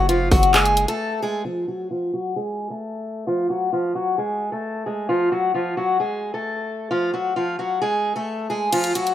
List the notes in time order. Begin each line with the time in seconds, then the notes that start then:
Already playing: F#1
0.09 F1 F3 F4, closed hi-hat
0.20 F#1
0.31 F#1 F#3 F#4, kick, open hi-hat
0.43 closed hi-hat
0.54 G#3 G#4, clap, closed hi-hat
0.65 closed hi-hat
0.77 closed hi-hat
0.88 A3 A4, closed hi-hat
1.22 G#3 G#4
1.45 F3 F4
1.68 F#3 F#4
1.91 F3 F4
2.13 F#3 F#4
2.36 G#3 G#4
2.70 A3 A4
3.27 F3 F4
3.50 F#3 F#4
3.73 F3 F4
3.95 F#3 F#4
4.18 G#3 G#4
4.52 A3 A4
4.86 G#3 G#4
5.09 F3 F4
5.32 F#3 F#4
5.54 F3 F4
5.77 F#3 F#4
6.00 G#3 G#4
6.34 A3 A4
6.91 F3 F4
7.14 F#3 F#4
7.36 F3 F4
7.59 F#3 F#4
7.82 G#3 G#4
8.16 A3 A4
8.50 G#3 G#4
8.72 F3 F4, closed hi-hat, crash
8.84 closed hi-hat
8.95 F#3 F#4, closed hi-hat
9.07 closed hi-hat